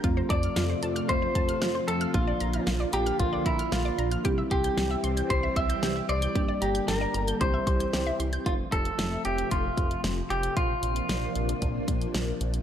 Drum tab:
HH |x-xxx-xxx-xxx-xx|x-xxx-xxx-xxx-xx|x-xxx-xxx-xxx-xx|x-xxx-xxx-xxx-xx|
SD |----o-------o---|----o-------o---|----o-------o---|----o-------o---|
BD |o-o-----o-o-----|o-------o-o-----|o-o-----o-o-----|o-------o-o-----|

HH |x-xxx-xxx-xxx-xx|x-xxx-xxx-xxx-xx|
SD |----o-------o---|----o-------o---|
BD |o-o-----o-o-----|o-------o-o-----|